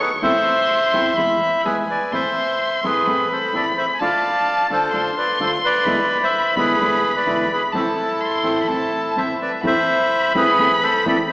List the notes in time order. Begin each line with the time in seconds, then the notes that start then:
Already playing: C#6
0.00 G#4 B4
0.22 E2 A2 E3 A3 C4 E4 C5 E5 C6
0.93 E2 A2 E3 A3 C4 E4
1.17 E2 B2 E3 G#3 B3 E4 B5
1.65 E2 B2 E3 G#3 B3 E4 G#4 B4 G#5
1.90 B4 D5
2.12 A2 E3 A3 C4 E4 C5 E5 C6
2.83 A2 E3 A3 C4 E4 G#4 B4
3.07 A2 E3 A3 C4 E4 B5
3.31 A4 C5
3.53 A2 E3 A3 C4 E4 A4 D5
3.78 C5 E5
3.94 G#5
4.00 D3 A3 D4 F4 D5 F5 A5
4.70 D3 A3 D4 F4 A4 C5
4.92 D3 A3 D4 F4 C6
5.17 B4 D5
5.39 D3 A3 D4 F4 A4 C5
5.64 B4 D5
5.85 E2 B2 D3 G#3 B3 D4 E4 B5
6.23 C5 E5
6.56 E2 B2 D3 G#3 B3 D4 E4 G#4 B4
6.80 E2 B2 D3 G#3 B3 D4 E4
7.16 B4 D5
7.26 E2 B2 D3 G#3 B3 D4 E4
7.52 G#4 B4
7.73 A2 E3 A3 C4 E4 A4 A5
8.21 C6
8.43 A2 E3 A3 C4 E4
8.62 B5
8.68 A2 E3 A3 C4 E4 A5
9.16 A2 E3 A3 C4 E4 A4 C5 E5
9.41 B4 D5
9.63 A2 E3 A3 C4 E4 C5 B5
9.67 E5
10.34 A2 E3 A3 C4 E4 G#4 B4
10.58 A2 E3 A3 C4 E4
10.82 A4 C5
11.05 A2 E3 A3 C4 E4 A4 D5